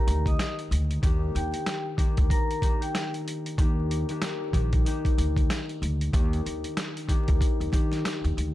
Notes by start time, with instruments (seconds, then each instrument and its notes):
Already playing: harp D#3 A#3 D#4 G4, vibraphone A#4 A#5
0.07 upright bass D2, closed hi-hat
0.26 vibraphone D#5 D#6, kick, closed hi-hat
0.39 snare, closed hi-hat
0.59 closed hi-hat
0.71 upright bass D2, closed hi-hat
0.91 closed hi-hat
1.02 upright bass D#2, harp D#3 A#3 D4 G4, kick, closed hi-hat
1.35 upright bass D#2, vibraphone G4 G5, closed hi-hat
1.54 closed hi-hat
1.66 snare, closed hi-hat
1.97 harp D#3 A#3 D4 G4, kick, closed hi-hat
2.17 upright bass D2, kick, closed hi-hat
2.30 vibraphone A#4 A#5, kick, closed hi-hat
2.51 closed hi-hat
2.61 harp D#3 A#3 D4 G4, kick, closed hi-hat
2.81 vibraphone G4 G5, closed hi-hat
2.95 snare, closed hi-hat
3.14 closed hi-hat
3.28 closed hi-hat
3.46 closed hi-hat
3.57 upright bass D#2, harp D#3 A#3 D4 G4, kick, closed hi-hat
3.91 closed hi-hat
4.08 harp D#3 A#3 D4 G4, closed hi-hat
4.22 snare, closed hi-hat
4.53 upright bass A#1, harp D#3 A#3 D4 G4, kick, closed hi-hat
4.73 kick, closed hi-hat
4.85 harp A#3 D4 D#4 G4, closed hi-hat
5.05 kick, closed hi-hat
5.18 upright bass D2, closed hi-hat
5.36 kick, closed hi-hat
5.50 snare, closed hi-hat
5.69 closed hi-hat
5.82 upright bass D2, closed hi-hat
6.01 closed hi-hat
6.13 upright bass D#2, harp D#3 A#3 D4 G4, kick, closed hi-hat
6.33 closed hi-hat
6.46 upright bass D#2, closed hi-hat
6.64 closed hi-hat
6.77 snare, closed hi-hat
6.97 closed hi-hat
7.07 harp D#3 A#3 D4 G4, kick, closed hi-hat
7.28 upright bass D2, kick, closed hi-hat
7.41 kick, closed hi-hat
7.60 upright bass D#2, closed hi-hat
7.71 harp D#3 A#3 D4 G4, upright bass D#3, kick, closed hi-hat
7.92 snare, closed hi-hat
8.05 snare, closed hi-hat
8.24 upright bass D#2, closed hi-hat
8.37 upright bass D2, closed hi-hat